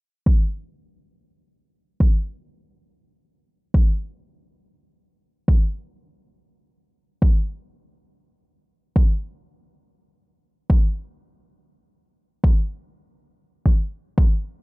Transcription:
0.26 kick loud
2.00 kick loud
3.74 kick loud
5.48 kick loud
7.22 kick loud
8.96 kick loud
10.70 kick loud
12.44 kick loud
13.66 kick medium
14.18 kick loud

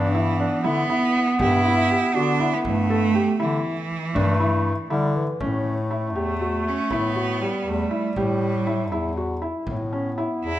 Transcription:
0.00 0.49 G2 medium
0.00 0.67 E3 loud
0.00 3.84 B3 loud
0.14 0.30 E4 medium
0.40 0.56 D4 medium
0.64 0.85 D3 medium
0.64 1.40 B3 loud
0.64 0.80 E4 medium
0.90 1.21 E4 medium
1.15 frame drum soft
1.39 1.99 G2 medium
1.39 2.16 E4 loud
1.39 1.56 G4 medium
1.39 frame drum medium
1.65 1.81 E4 medium
1.91 2.06 G4 medium
2.14 2.55 D3 medium
2.14 2.55 D4 loud
2.14 2.31 F#4 medium
2.39 2.72 E4 medium
2.39 frame drum soft
2.54 2.64 B3 medium
2.65 3.24 G2 medium
2.65 3.43 A3 loud
2.65 frame drum medium
2.90 3.06 A4 medium
2.90 frame drum soft
3.15 3.31 G4 medium
3.40 3.60 D3 medium
3.40 5.16 E3 medium
3.40 3.71 E4 medium
3.91 frame drum soft
4.14 4.75 G2 loud
4.14 4.86 A3 loud
4.14 4.31 D4 medium
4.14 frame drum medium
4.40 4.72 E4 medium
4.40 frame drum soft
4.66 frame drum soft
4.90 5.30 D3 medium
4.90 5.18 G3 medium
4.90 5.22 E4 medium
5.15 5.40 E3 medium
5.15 frame drum soft
5.40 6.17 A2 medium
5.40 7.43 A3 loud
5.40 5.72 C#4 medium
5.40 frame drum medium
5.91 6.06 E4 medium
6.15 6.75 E2 medium
6.15 6.70 A3 medium
6.15 6.31 G4 medium
6.41 6.72 F#4 medium
6.68 6.95 C#4 medium
6.90 7.50 A2 medium
6.90 7.70 B3 medium
6.90 7.07 E4 medium
6.90 frame drum medium
7.16 7.32 F#4 medium
7.42 9.41 G3 medium
7.42 7.73 G4 medium
7.66 7.86 E2 medium
7.66 8.19 A3 medium
7.66 frame drum soft
7.91 8.07 E4 medium
8.16 8.93 A2 medium
8.16 9.18 G3 medium
8.16 8.48 G4 medium
8.16 frame drum medium
8.67 8.83 E4 medium
8.92 9.51 E2 medium
8.92 9.08 E4 medium
9.17 9.33 F#4 medium
9.42 9.73 E4 medium
9.67 10.27 A2 medium
9.67 10.59 B3 medium
9.67 frame drum medium
9.93 10.08 C#4 medium
10.18 10.49 E4 medium
10.42 10.59 E2 medium
10.42 10.59 E4 medium
10.42 frame drum soft

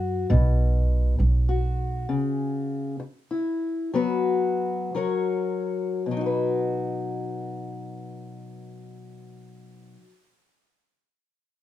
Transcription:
0.00 0.25 F#2 medium
0.00 0.26 F#4 soft
0.30 1.15 B1 medium
0.30 1.17 B2 medium
1.19 2.05 B1 medium
1.19 muted steel-string acoustic guitar stroke medium
1.49 2.05 F#4 soft
2.09 2.98 C#3 medium
3.00 muted steel-string acoustic guitar stroke medium
3.31 3.90 E4 soft
3.94 4.93 F#3 medium
3.94 4.95 B3 soft
3.94 4.92 F#4 soft
3.94 4.92 B4 medium
4.95 6.10 F#3 soft
4.95 6.01 F#4 soft
4.95 6.02 A#4 soft
4.95 6.02 C#5 soft
6.06 9.95 B2 soft
6.11 10.00 F#3 soft
6.17 10.06 D#4 soft
6.21 10.10 F#4 soft
6.26 10.15 B4 soft

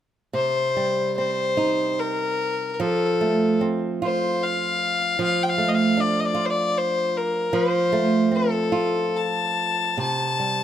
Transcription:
0.33 2.79 C3 medium
0.33 1.13 C5 medium
0.77 2.88 G3 soft
1.18 3.61 C4 soft
1.18 2.01 C5 medium
1.57 2.88 D#4 medium
1.99 2.74 A#4 medium
2.74 2.83 A#4 soft
2.80 5.19 F3 medium
2.80 3.62 A4 medium
3.21 5.57 A3 soft
3.61 5.28 C4 soft
4.02 6.34 F4 medium
4.02 4.45 C5 medium
4.43 5.21 F5 medium
5.19 7.53 F3 medium
5.24 5.44 F5 medium
5.43 5.51 G5 medium
5.49 5.70 F5 medium
5.58 7.92 A3 soft
5.69 5.76 D#5 medium
5.74 6.02 F5 medium
5.97 7.61 D4 medium
5.97 6.21 D5 medium
6.20 6.27 D#5 medium
6.25 6.47 D5 medium
6.34 8.72 F4 medium
6.46 6.51 C5 medium
6.50 6.79 D5 medium
6.77 7.19 C5 medium
7.17 7.57 A#4 medium
7.53 9.98 F3 medium
7.53 8.37 C5 medium
7.92 10.06 A3 soft
8.31 10.63 C4 soft
8.31 9.18 A4 medium
8.72 10.06 F4 medium
9.17 9.99 A5 medium
9.97 10.63 C3 medium
9.97 10.63 A5 medium
10.40 10.63 G3 soft

